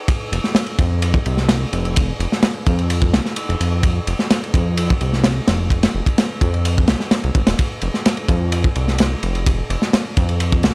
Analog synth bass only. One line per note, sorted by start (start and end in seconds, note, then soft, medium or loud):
0.32 0.40 F1 loud
0.79 1.19 F2 loud
1.26 1.66 C2 medium
1.73 2.13 F1 medium
2.20 2.27 F1 loud
2.67 3.15 F2 loud
3.13 3.21 C2 medium
3.49 3.56 F1 loud
3.60 4.00 F2 medium
4.07 4.15 F1 loud
4.54 4.94 F2 loud
5.01 5.41 C2 medium
5.48 5.88 F1 medium
5.95 6.02 F1 loud
6.41 6.90 F2 loud
6.89 6.96 C2 medium
7.24 7.31 C2 loud
7.35 7.43 G#1 medium
7.48 7.54 D#1 medium
7.82 7.90 F1 loud
8.29 8.69 F2 loud
8.76 9.16 C2 medium
9.23 9.63 F1 medium
9.70 9.77 F1 loud
10.17 10.65 F2 loud
10.64 10.71 C2 medium